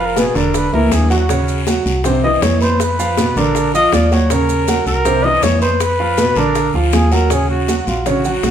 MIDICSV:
0, 0, Header, 1, 5, 480
1, 0, Start_track
1, 0, Key_signature, -6, "minor"
1, 0, Tempo, 375704
1, 1657, Time_signature, 4, 2, 24, 8
1, 10867, End_track
2, 0, Start_track
2, 0, Title_t, "Trumpet"
2, 0, Program_c, 0, 56
2, 72, Note_on_c, 0, 70, 81
2, 234, Note_on_c, 0, 68, 84
2, 253, Note_off_c, 0, 70, 0
2, 454, Note_on_c, 0, 70, 91
2, 474, Note_off_c, 0, 68, 0
2, 705, Note_on_c, 0, 71, 94
2, 724, Note_off_c, 0, 70, 0
2, 936, Note_off_c, 0, 71, 0
2, 944, Note_on_c, 0, 70, 90
2, 1189, Note_on_c, 0, 68, 81
2, 1208, Note_off_c, 0, 70, 0
2, 1405, Note_off_c, 0, 68, 0
2, 1413, Note_on_c, 0, 66, 76
2, 2085, Note_off_c, 0, 66, 0
2, 2860, Note_on_c, 0, 75, 95
2, 3096, Note_on_c, 0, 73, 85
2, 3115, Note_off_c, 0, 75, 0
2, 3337, Note_off_c, 0, 73, 0
2, 3345, Note_on_c, 0, 72, 87
2, 3594, Note_on_c, 0, 71, 96
2, 3614, Note_off_c, 0, 72, 0
2, 4304, Note_on_c, 0, 70, 96
2, 4323, Note_off_c, 0, 71, 0
2, 4782, Note_off_c, 0, 70, 0
2, 4789, Note_on_c, 0, 75, 115
2, 5026, Note_on_c, 0, 74, 96
2, 5045, Note_off_c, 0, 75, 0
2, 5271, Note_on_c, 0, 73, 88
2, 5290, Note_off_c, 0, 74, 0
2, 5512, Note_on_c, 0, 70, 98
2, 5531, Note_off_c, 0, 73, 0
2, 6212, Note_off_c, 0, 70, 0
2, 6220, Note_on_c, 0, 70, 105
2, 6695, Note_on_c, 0, 75, 119
2, 6714, Note_off_c, 0, 70, 0
2, 6935, Note_on_c, 0, 73, 98
2, 6955, Note_off_c, 0, 75, 0
2, 7164, Note_off_c, 0, 73, 0
2, 7172, Note_on_c, 0, 72, 89
2, 7426, Note_on_c, 0, 71, 96
2, 7445, Note_off_c, 0, 72, 0
2, 8140, Note_on_c, 0, 70, 105
2, 8159, Note_off_c, 0, 71, 0
2, 8618, Note_off_c, 0, 70, 0
2, 8868, Note_on_c, 0, 68, 87
2, 9112, Note_on_c, 0, 70, 88
2, 9132, Note_off_c, 0, 68, 0
2, 9357, Note_on_c, 0, 68, 87
2, 9376, Note_off_c, 0, 70, 0
2, 9571, Note_off_c, 0, 68, 0
2, 9579, Note_on_c, 0, 66, 81
2, 10056, Note_on_c, 0, 65, 76
2, 10075, Note_off_c, 0, 66, 0
2, 10202, Note_off_c, 0, 65, 0
2, 10202, Note_on_c, 0, 65, 58
2, 10296, Note_on_c, 0, 66, 92
2, 10315, Note_off_c, 0, 65, 0
2, 10867, Note_off_c, 0, 66, 0
2, 10867, End_track
3, 0, Start_track
3, 0, Title_t, "Grand piano"
3, 0, Program_c, 1, 0
3, 0, Note_on_c, 1, 53, 80
3, 0, Note_on_c, 1, 65, 88
3, 0, Note_on_c, 1, 77, 86
3, 164, Note_off_c, 1, 53, 0
3, 166, Note_off_c, 1, 65, 0
3, 168, Note_off_c, 1, 77, 0
3, 208, Note_on_c, 1, 47, 82
3, 214, Note_on_c, 1, 59, 79
3, 215, Note_on_c, 1, 71, 80
3, 408, Note_off_c, 1, 47, 0
3, 412, Note_off_c, 1, 59, 0
3, 412, Note_off_c, 1, 71, 0
3, 450, Note_on_c, 1, 50, 78
3, 453, Note_on_c, 1, 62, 75
3, 459, Note_on_c, 1, 74, 81
3, 846, Note_off_c, 1, 50, 0
3, 848, Note_off_c, 1, 62, 0
3, 851, Note_off_c, 1, 74, 0
3, 931, Note_on_c, 1, 52, 71
3, 933, Note_on_c, 1, 64, 67
3, 939, Note_on_c, 1, 76, 71
3, 1327, Note_off_c, 1, 52, 0
3, 1328, Note_off_c, 1, 64, 0
3, 1332, Note_off_c, 1, 76, 0
3, 1406, Note_on_c, 1, 54, 79
3, 1407, Note_on_c, 1, 66, 74
3, 1413, Note_on_c, 1, 78, 75
3, 1607, Note_off_c, 1, 54, 0
3, 1608, Note_off_c, 1, 66, 0
3, 1612, Note_off_c, 1, 78, 0
3, 1652, Note_on_c, 1, 49, 86
3, 1658, Note_on_c, 1, 61, 76
3, 1659, Note_on_c, 1, 73, 80
3, 2048, Note_off_c, 1, 49, 0
3, 2052, Note_off_c, 1, 61, 0
3, 2052, Note_off_c, 1, 73, 0
3, 2132, Note_on_c, 1, 54, 72
3, 2139, Note_on_c, 1, 66, 69
3, 2139, Note_on_c, 1, 78, 71
3, 2529, Note_off_c, 1, 54, 0
3, 2532, Note_off_c, 1, 66, 0
3, 2532, Note_off_c, 1, 78, 0
3, 2616, Note_on_c, 1, 48, 79
3, 2625, Note_on_c, 1, 60, 81
3, 2626, Note_on_c, 1, 72, 86
3, 2814, Note_off_c, 1, 48, 0
3, 2819, Note_off_c, 1, 60, 0
3, 2820, Note_off_c, 1, 72, 0
3, 2856, Note_on_c, 1, 52, 73
3, 2857, Note_on_c, 1, 64, 75
3, 2864, Note_on_c, 1, 76, 71
3, 3251, Note_off_c, 1, 52, 0
3, 3252, Note_off_c, 1, 64, 0
3, 3256, Note_off_c, 1, 76, 0
3, 3335, Note_on_c, 1, 59, 82
3, 3342, Note_on_c, 1, 71, 76
3, 3345, Note_on_c, 1, 83, 82
3, 3730, Note_off_c, 1, 59, 0
3, 3734, Note_off_c, 1, 71, 0
3, 3737, Note_off_c, 1, 83, 0
3, 3818, Note_on_c, 1, 65, 81
3, 3821, Note_on_c, 1, 53, 86
3, 3827, Note_on_c, 1, 77, 89
3, 4015, Note_off_c, 1, 65, 0
3, 4017, Note_off_c, 1, 53, 0
3, 4021, Note_off_c, 1, 77, 0
3, 4056, Note_on_c, 1, 47, 83
3, 4058, Note_on_c, 1, 59, 85
3, 4061, Note_on_c, 1, 71, 81
3, 4254, Note_off_c, 1, 47, 0
3, 4255, Note_off_c, 1, 59, 0
3, 4257, Note_off_c, 1, 71, 0
3, 4305, Note_on_c, 1, 50, 84
3, 4309, Note_on_c, 1, 62, 81
3, 4314, Note_on_c, 1, 74, 78
3, 4696, Note_off_c, 1, 50, 0
3, 4699, Note_off_c, 1, 62, 0
3, 4702, Note_off_c, 1, 74, 0
3, 4779, Note_on_c, 1, 53, 74
3, 4781, Note_on_c, 1, 65, 71
3, 4786, Note_on_c, 1, 77, 72
3, 5173, Note_off_c, 1, 53, 0
3, 5174, Note_off_c, 1, 65, 0
3, 5177, Note_off_c, 1, 77, 0
3, 5261, Note_on_c, 1, 54, 78
3, 5265, Note_on_c, 1, 66, 83
3, 5268, Note_on_c, 1, 78, 77
3, 5457, Note_off_c, 1, 54, 0
3, 5460, Note_off_c, 1, 66, 0
3, 5461, Note_off_c, 1, 78, 0
3, 5499, Note_on_c, 1, 49, 84
3, 5501, Note_on_c, 1, 61, 85
3, 5509, Note_on_c, 1, 73, 77
3, 5893, Note_off_c, 1, 49, 0
3, 5894, Note_off_c, 1, 61, 0
3, 5898, Note_off_c, 1, 73, 0
3, 5987, Note_on_c, 1, 54, 68
3, 5987, Note_on_c, 1, 66, 69
3, 5988, Note_on_c, 1, 78, 74
3, 6377, Note_off_c, 1, 54, 0
3, 6377, Note_off_c, 1, 66, 0
3, 6378, Note_off_c, 1, 78, 0
3, 6454, Note_on_c, 1, 48, 87
3, 6459, Note_on_c, 1, 60, 90
3, 6463, Note_on_c, 1, 72, 82
3, 6653, Note_off_c, 1, 48, 0
3, 6656, Note_off_c, 1, 60, 0
3, 6658, Note_off_c, 1, 72, 0
3, 6697, Note_on_c, 1, 52, 74
3, 6704, Note_on_c, 1, 64, 74
3, 6704, Note_on_c, 1, 76, 76
3, 7091, Note_off_c, 1, 52, 0
3, 7095, Note_off_c, 1, 64, 0
3, 7095, Note_off_c, 1, 76, 0
3, 7174, Note_on_c, 1, 71, 80
3, 7177, Note_on_c, 1, 59, 74
3, 7180, Note_on_c, 1, 83, 79
3, 7569, Note_off_c, 1, 71, 0
3, 7571, Note_off_c, 1, 59, 0
3, 7572, Note_off_c, 1, 83, 0
3, 7656, Note_on_c, 1, 53, 84
3, 7664, Note_on_c, 1, 65, 81
3, 7664, Note_on_c, 1, 77, 80
3, 7853, Note_off_c, 1, 53, 0
3, 7858, Note_off_c, 1, 65, 0
3, 7858, Note_off_c, 1, 77, 0
3, 7894, Note_on_c, 1, 47, 84
3, 7897, Note_on_c, 1, 59, 84
3, 7901, Note_on_c, 1, 71, 87
3, 8092, Note_off_c, 1, 47, 0
3, 8094, Note_off_c, 1, 59, 0
3, 8096, Note_off_c, 1, 71, 0
3, 8133, Note_on_c, 1, 50, 83
3, 8134, Note_on_c, 1, 62, 91
3, 8145, Note_on_c, 1, 74, 86
3, 8528, Note_off_c, 1, 50, 0
3, 8529, Note_off_c, 1, 62, 0
3, 8535, Note_off_c, 1, 74, 0
3, 8619, Note_on_c, 1, 53, 81
3, 8621, Note_on_c, 1, 65, 76
3, 8626, Note_on_c, 1, 77, 72
3, 9011, Note_off_c, 1, 53, 0
3, 9012, Note_off_c, 1, 65, 0
3, 9016, Note_off_c, 1, 77, 0
3, 9087, Note_on_c, 1, 54, 81
3, 9094, Note_on_c, 1, 66, 78
3, 9097, Note_on_c, 1, 78, 79
3, 9288, Note_off_c, 1, 54, 0
3, 9291, Note_off_c, 1, 66, 0
3, 9293, Note_off_c, 1, 78, 0
3, 9330, Note_on_c, 1, 49, 78
3, 9334, Note_on_c, 1, 61, 74
3, 9335, Note_on_c, 1, 73, 76
3, 9726, Note_off_c, 1, 49, 0
3, 9728, Note_off_c, 1, 61, 0
3, 9729, Note_off_c, 1, 73, 0
3, 9812, Note_on_c, 1, 54, 67
3, 9817, Note_on_c, 1, 66, 72
3, 9824, Note_on_c, 1, 78, 66
3, 10207, Note_off_c, 1, 54, 0
3, 10210, Note_off_c, 1, 66, 0
3, 10214, Note_off_c, 1, 78, 0
3, 10297, Note_on_c, 1, 49, 74
3, 10303, Note_on_c, 1, 61, 72
3, 10307, Note_on_c, 1, 73, 77
3, 10493, Note_off_c, 1, 49, 0
3, 10497, Note_off_c, 1, 61, 0
3, 10499, Note_off_c, 1, 73, 0
3, 10539, Note_on_c, 1, 54, 73
3, 10545, Note_on_c, 1, 66, 68
3, 10546, Note_on_c, 1, 78, 66
3, 10867, Note_off_c, 1, 54, 0
3, 10867, Note_off_c, 1, 66, 0
3, 10867, Note_off_c, 1, 78, 0
3, 10867, End_track
4, 0, Start_track
4, 0, Title_t, "FM bass"
4, 0, Program_c, 2, 39
4, 0, Note_on_c, 2, 29, 100
4, 379, Note_off_c, 2, 29, 0
4, 454, Note_on_c, 2, 28, 94
4, 901, Note_off_c, 2, 28, 0
4, 939, Note_on_c, 2, 37, 75
4, 1161, Note_off_c, 2, 37, 0
4, 1168, Note_on_c, 2, 39, 92
4, 2299, Note_off_c, 2, 39, 0
4, 2372, Note_on_c, 2, 36, 99
4, 3045, Note_off_c, 2, 36, 0
4, 3094, Note_on_c, 2, 41, 94
4, 4222, Note_off_c, 2, 41, 0
4, 4295, Note_on_c, 2, 34, 93
4, 4967, Note_off_c, 2, 34, 0
4, 5020, Note_on_c, 2, 39, 94
4, 6144, Note_off_c, 2, 39, 0
4, 6216, Note_on_c, 2, 36, 87
4, 6886, Note_off_c, 2, 36, 0
4, 6936, Note_on_c, 2, 41, 93
4, 8061, Note_off_c, 2, 41, 0
4, 8129, Note_on_c, 2, 34, 90
4, 8579, Note_off_c, 2, 34, 0
4, 8611, Note_on_c, 2, 38, 71
4, 8837, Note_off_c, 2, 38, 0
4, 8855, Note_on_c, 2, 39, 105
4, 9979, Note_off_c, 2, 39, 0
4, 10058, Note_on_c, 2, 34, 93
4, 10726, Note_off_c, 2, 34, 0
4, 10775, Note_on_c, 2, 35, 95
4, 10867, Note_off_c, 2, 35, 0
4, 10867, End_track
5, 0, Start_track
5, 0, Title_t, "Drums"
5, 210, Note_on_c, 9, 60, 56
5, 211, Note_on_c, 9, 73, 71
5, 214, Note_on_c, 9, 63, 95
5, 220, Note_on_c, 9, 70, 79
5, 338, Note_off_c, 9, 60, 0
5, 339, Note_off_c, 9, 73, 0
5, 342, Note_off_c, 9, 63, 0
5, 348, Note_off_c, 9, 70, 0
5, 451, Note_on_c, 9, 73, 71
5, 456, Note_on_c, 9, 60, 32
5, 456, Note_on_c, 9, 63, 35
5, 459, Note_on_c, 9, 70, 30
5, 579, Note_off_c, 9, 73, 0
5, 584, Note_off_c, 9, 60, 0
5, 584, Note_off_c, 9, 63, 0
5, 587, Note_off_c, 9, 70, 0
5, 689, Note_on_c, 9, 74, 77
5, 694, Note_on_c, 9, 60, 62
5, 695, Note_on_c, 9, 70, 63
5, 705, Note_on_c, 9, 63, 34
5, 817, Note_off_c, 9, 74, 0
5, 822, Note_off_c, 9, 60, 0
5, 822, Note_off_c, 9, 70, 0
5, 832, Note_off_c, 9, 63, 0
5, 930, Note_on_c, 9, 60, 33
5, 942, Note_on_c, 9, 63, 105
5, 1057, Note_off_c, 9, 60, 0
5, 1070, Note_off_c, 9, 63, 0
5, 1109, Note_on_c, 9, 63, 88
5, 1171, Note_on_c, 9, 60, 67
5, 1171, Note_on_c, 9, 61, 84
5, 1173, Note_on_c, 9, 73, 76
5, 1175, Note_on_c, 9, 70, 62
5, 1237, Note_off_c, 9, 63, 0
5, 1262, Note_on_c, 9, 64, 83
5, 1299, Note_off_c, 9, 60, 0
5, 1299, Note_off_c, 9, 61, 0
5, 1301, Note_off_c, 9, 73, 0
5, 1303, Note_off_c, 9, 70, 0
5, 1389, Note_off_c, 9, 64, 0
5, 1407, Note_on_c, 9, 73, 77
5, 1415, Note_on_c, 9, 60, 35
5, 1418, Note_on_c, 9, 70, 28
5, 1428, Note_on_c, 9, 64, 75
5, 1535, Note_off_c, 9, 73, 0
5, 1543, Note_off_c, 9, 60, 0
5, 1546, Note_off_c, 9, 70, 0
5, 1556, Note_off_c, 9, 64, 0
5, 1650, Note_on_c, 9, 60, 63
5, 1654, Note_on_c, 9, 74, 65
5, 1660, Note_on_c, 9, 70, 76
5, 1665, Note_on_c, 9, 63, 32
5, 1778, Note_off_c, 9, 60, 0
5, 1782, Note_off_c, 9, 74, 0
5, 1788, Note_off_c, 9, 70, 0
5, 1793, Note_off_c, 9, 63, 0
5, 1896, Note_on_c, 9, 70, 60
5, 1905, Note_on_c, 9, 63, 33
5, 2023, Note_off_c, 9, 70, 0
5, 2033, Note_off_c, 9, 63, 0
5, 2130, Note_on_c, 9, 60, 60
5, 2131, Note_on_c, 9, 73, 71
5, 2139, Note_on_c, 9, 63, 93
5, 2139, Note_on_c, 9, 70, 73
5, 2257, Note_off_c, 9, 60, 0
5, 2258, Note_off_c, 9, 73, 0
5, 2267, Note_off_c, 9, 63, 0
5, 2267, Note_off_c, 9, 70, 0
5, 2375, Note_on_c, 9, 73, 73
5, 2382, Note_on_c, 9, 63, 33
5, 2383, Note_on_c, 9, 70, 29
5, 2503, Note_off_c, 9, 73, 0
5, 2510, Note_off_c, 9, 63, 0
5, 2511, Note_off_c, 9, 70, 0
5, 2608, Note_on_c, 9, 60, 64
5, 2617, Note_on_c, 9, 70, 62
5, 2618, Note_on_c, 9, 74, 70
5, 2626, Note_on_c, 9, 63, 33
5, 2626, Note_on_c, 9, 64, 80
5, 2736, Note_off_c, 9, 60, 0
5, 2745, Note_off_c, 9, 70, 0
5, 2745, Note_off_c, 9, 74, 0
5, 2754, Note_off_c, 9, 63, 0
5, 2754, Note_off_c, 9, 64, 0
5, 2867, Note_on_c, 9, 63, 34
5, 2867, Note_on_c, 9, 64, 73
5, 2994, Note_off_c, 9, 63, 0
5, 2994, Note_off_c, 9, 64, 0
5, 3096, Note_on_c, 9, 60, 76
5, 3096, Note_on_c, 9, 61, 86
5, 3097, Note_on_c, 9, 73, 73
5, 3099, Note_on_c, 9, 70, 67
5, 3104, Note_on_c, 9, 63, 80
5, 3224, Note_off_c, 9, 60, 0
5, 3224, Note_off_c, 9, 61, 0
5, 3225, Note_off_c, 9, 73, 0
5, 3227, Note_off_c, 9, 70, 0
5, 3232, Note_off_c, 9, 63, 0
5, 3330, Note_on_c, 9, 73, 75
5, 3347, Note_on_c, 9, 70, 28
5, 3355, Note_on_c, 9, 63, 70
5, 3458, Note_off_c, 9, 73, 0
5, 3475, Note_off_c, 9, 70, 0
5, 3483, Note_off_c, 9, 63, 0
5, 3569, Note_on_c, 9, 74, 64
5, 3575, Note_on_c, 9, 60, 69
5, 3584, Note_on_c, 9, 70, 78
5, 3590, Note_on_c, 9, 63, 32
5, 3697, Note_off_c, 9, 74, 0
5, 3703, Note_off_c, 9, 60, 0
5, 3712, Note_off_c, 9, 70, 0
5, 3718, Note_off_c, 9, 63, 0
5, 3826, Note_on_c, 9, 70, 67
5, 3833, Note_on_c, 9, 63, 35
5, 3954, Note_off_c, 9, 70, 0
5, 3961, Note_off_c, 9, 63, 0
5, 4055, Note_on_c, 9, 60, 61
5, 4056, Note_on_c, 9, 73, 68
5, 4064, Note_on_c, 9, 70, 74
5, 4070, Note_on_c, 9, 63, 92
5, 4183, Note_off_c, 9, 60, 0
5, 4184, Note_off_c, 9, 73, 0
5, 4192, Note_off_c, 9, 70, 0
5, 4197, Note_off_c, 9, 63, 0
5, 4297, Note_on_c, 9, 60, 32
5, 4302, Note_on_c, 9, 73, 70
5, 4304, Note_on_c, 9, 70, 31
5, 4311, Note_on_c, 9, 63, 37
5, 4425, Note_off_c, 9, 60, 0
5, 4430, Note_off_c, 9, 73, 0
5, 4432, Note_off_c, 9, 70, 0
5, 4439, Note_off_c, 9, 63, 0
5, 4534, Note_on_c, 9, 60, 63
5, 4546, Note_on_c, 9, 70, 64
5, 4547, Note_on_c, 9, 63, 35
5, 4549, Note_on_c, 9, 74, 73
5, 4662, Note_off_c, 9, 60, 0
5, 4673, Note_off_c, 9, 70, 0
5, 4675, Note_off_c, 9, 63, 0
5, 4676, Note_off_c, 9, 74, 0
5, 4776, Note_on_c, 9, 60, 36
5, 4788, Note_on_c, 9, 70, 61
5, 4792, Note_on_c, 9, 63, 34
5, 4903, Note_off_c, 9, 60, 0
5, 4916, Note_off_c, 9, 70, 0
5, 4920, Note_off_c, 9, 63, 0
5, 5015, Note_on_c, 9, 60, 69
5, 5015, Note_on_c, 9, 61, 89
5, 5023, Note_on_c, 9, 63, 84
5, 5025, Note_on_c, 9, 73, 73
5, 5027, Note_on_c, 9, 70, 65
5, 5142, Note_off_c, 9, 60, 0
5, 5142, Note_off_c, 9, 61, 0
5, 5151, Note_off_c, 9, 63, 0
5, 5152, Note_off_c, 9, 73, 0
5, 5154, Note_off_c, 9, 70, 0
5, 5255, Note_on_c, 9, 60, 40
5, 5260, Note_on_c, 9, 63, 79
5, 5262, Note_on_c, 9, 73, 71
5, 5266, Note_on_c, 9, 70, 29
5, 5382, Note_off_c, 9, 60, 0
5, 5388, Note_off_c, 9, 63, 0
5, 5390, Note_off_c, 9, 73, 0
5, 5394, Note_off_c, 9, 70, 0
5, 5496, Note_on_c, 9, 60, 71
5, 5499, Note_on_c, 9, 70, 70
5, 5624, Note_off_c, 9, 60, 0
5, 5626, Note_off_c, 9, 70, 0
5, 5738, Note_on_c, 9, 70, 67
5, 5740, Note_on_c, 9, 63, 34
5, 5865, Note_off_c, 9, 70, 0
5, 5868, Note_off_c, 9, 63, 0
5, 5973, Note_on_c, 9, 73, 74
5, 5976, Note_on_c, 9, 70, 78
5, 5981, Note_on_c, 9, 63, 93
5, 5982, Note_on_c, 9, 60, 59
5, 6101, Note_off_c, 9, 73, 0
5, 6104, Note_off_c, 9, 70, 0
5, 6108, Note_off_c, 9, 63, 0
5, 6109, Note_off_c, 9, 60, 0
5, 6217, Note_on_c, 9, 70, 27
5, 6217, Note_on_c, 9, 73, 71
5, 6229, Note_on_c, 9, 63, 37
5, 6344, Note_off_c, 9, 70, 0
5, 6345, Note_off_c, 9, 73, 0
5, 6357, Note_off_c, 9, 63, 0
5, 6456, Note_on_c, 9, 60, 64
5, 6457, Note_on_c, 9, 70, 73
5, 6461, Note_on_c, 9, 74, 72
5, 6465, Note_on_c, 9, 63, 37
5, 6465, Note_on_c, 9, 64, 80
5, 6584, Note_off_c, 9, 60, 0
5, 6585, Note_off_c, 9, 70, 0
5, 6588, Note_off_c, 9, 74, 0
5, 6592, Note_off_c, 9, 63, 0
5, 6592, Note_off_c, 9, 64, 0
5, 6696, Note_on_c, 9, 63, 36
5, 6696, Note_on_c, 9, 64, 74
5, 6824, Note_off_c, 9, 63, 0
5, 6824, Note_off_c, 9, 64, 0
5, 6934, Note_on_c, 9, 63, 82
5, 6934, Note_on_c, 9, 70, 67
5, 6934, Note_on_c, 9, 73, 79
5, 6936, Note_on_c, 9, 60, 68
5, 6936, Note_on_c, 9, 61, 87
5, 7061, Note_off_c, 9, 63, 0
5, 7062, Note_off_c, 9, 70, 0
5, 7062, Note_off_c, 9, 73, 0
5, 7063, Note_off_c, 9, 60, 0
5, 7063, Note_off_c, 9, 61, 0
5, 7177, Note_on_c, 9, 70, 30
5, 7178, Note_on_c, 9, 73, 74
5, 7304, Note_off_c, 9, 70, 0
5, 7306, Note_off_c, 9, 73, 0
5, 7410, Note_on_c, 9, 74, 73
5, 7415, Note_on_c, 9, 60, 70
5, 7415, Note_on_c, 9, 70, 73
5, 7420, Note_on_c, 9, 63, 34
5, 7537, Note_off_c, 9, 74, 0
5, 7543, Note_off_c, 9, 60, 0
5, 7543, Note_off_c, 9, 70, 0
5, 7548, Note_off_c, 9, 63, 0
5, 7663, Note_on_c, 9, 63, 34
5, 7791, Note_off_c, 9, 63, 0
5, 7886, Note_on_c, 9, 73, 71
5, 7893, Note_on_c, 9, 60, 58
5, 7894, Note_on_c, 9, 70, 77
5, 7899, Note_on_c, 9, 63, 97
5, 8013, Note_off_c, 9, 73, 0
5, 8020, Note_off_c, 9, 60, 0
5, 8022, Note_off_c, 9, 70, 0
5, 8027, Note_off_c, 9, 63, 0
5, 8121, Note_on_c, 9, 73, 71
5, 8135, Note_on_c, 9, 60, 35
5, 8135, Note_on_c, 9, 70, 32
5, 8249, Note_off_c, 9, 73, 0
5, 8263, Note_off_c, 9, 60, 0
5, 8263, Note_off_c, 9, 70, 0
5, 8369, Note_on_c, 9, 74, 72
5, 8370, Note_on_c, 9, 70, 69
5, 8374, Note_on_c, 9, 60, 66
5, 8386, Note_on_c, 9, 63, 32
5, 8497, Note_off_c, 9, 70, 0
5, 8497, Note_off_c, 9, 74, 0
5, 8502, Note_off_c, 9, 60, 0
5, 8514, Note_off_c, 9, 63, 0
5, 8617, Note_on_c, 9, 60, 38
5, 8626, Note_on_c, 9, 63, 38
5, 8745, Note_off_c, 9, 60, 0
5, 8754, Note_off_c, 9, 63, 0
5, 8849, Note_on_c, 9, 70, 68
5, 8852, Note_on_c, 9, 73, 69
5, 8857, Note_on_c, 9, 60, 72
5, 8857, Note_on_c, 9, 61, 85
5, 8866, Note_on_c, 9, 63, 88
5, 8976, Note_off_c, 9, 70, 0
5, 8980, Note_off_c, 9, 73, 0
5, 8985, Note_off_c, 9, 60, 0
5, 8985, Note_off_c, 9, 61, 0
5, 8994, Note_off_c, 9, 63, 0
5, 9092, Note_on_c, 9, 73, 81
5, 9095, Note_on_c, 9, 70, 29
5, 9097, Note_on_c, 9, 60, 39
5, 9099, Note_on_c, 9, 63, 80
5, 9220, Note_off_c, 9, 73, 0
5, 9222, Note_off_c, 9, 70, 0
5, 9225, Note_off_c, 9, 60, 0
5, 9227, Note_off_c, 9, 63, 0
5, 9330, Note_on_c, 9, 60, 68
5, 9336, Note_on_c, 9, 70, 69
5, 9338, Note_on_c, 9, 74, 64
5, 9457, Note_off_c, 9, 60, 0
5, 9464, Note_off_c, 9, 70, 0
5, 9466, Note_off_c, 9, 74, 0
5, 9576, Note_on_c, 9, 63, 31
5, 9704, Note_off_c, 9, 63, 0
5, 9815, Note_on_c, 9, 73, 68
5, 9816, Note_on_c, 9, 60, 57
5, 9819, Note_on_c, 9, 70, 74
5, 9821, Note_on_c, 9, 63, 91
5, 9942, Note_off_c, 9, 73, 0
5, 9944, Note_off_c, 9, 60, 0
5, 9947, Note_off_c, 9, 70, 0
5, 9949, Note_off_c, 9, 63, 0
5, 10056, Note_on_c, 9, 73, 67
5, 10059, Note_on_c, 9, 70, 27
5, 10066, Note_on_c, 9, 63, 33
5, 10184, Note_off_c, 9, 73, 0
5, 10187, Note_off_c, 9, 70, 0
5, 10194, Note_off_c, 9, 63, 0
5, 10297, Note_on_c, 9, 60, 60
5, 10297, Note_on_c, 9, 74, 69
5, 10298, Note_on_c, 9, 70, 60
5, 10305, Note_on_c, 9, 63, 33
5, 10305, Note_on_c, 9, 64, 77
5, 10425, Note_off_c, 9, 60, 0
5, 10425, Note_off_c, 9, 74, 0
5, 10426, Note_off_c, 9, 70, 0
5, 10433, Note_off_c, 9, 63, 0
5, 10433, Note_off_c, 9, 64, 0
5, 10536, Note_on_c, 9, 70, 53
5, 10541, Note_on_c, 9, 63, 35
5, 10541, Note_on_c, 9, 64, 68
5, 10663, Note_off_c, 9, 70, 0
5, 10668, Note_off_c, 9, 63, 0
5, 10668, Note_off_c, 9, 64, 0
5, 10774, Note_on_c, 9, 73, 67
5, 10776, Note_on_c, 9, 60, 65
5, 10776, Note_on_c, 9, 61, 85
5, 10777, Note_on_c, 9, 70, 58
5, 10785, Note_on_c, 9, 63, 75
5, 10867, Note_off_c, 9, 60, 0
5, 10867, Note_off_c, 9, 61, 0
5, 10867, Note_off_c, 9, 63, 0
5, 10867, Note_off_c, 9, 70, 0
5, 10867, Note_off_c, 9, 73, 0
5, 10867, End_track
0, 0, End_of_file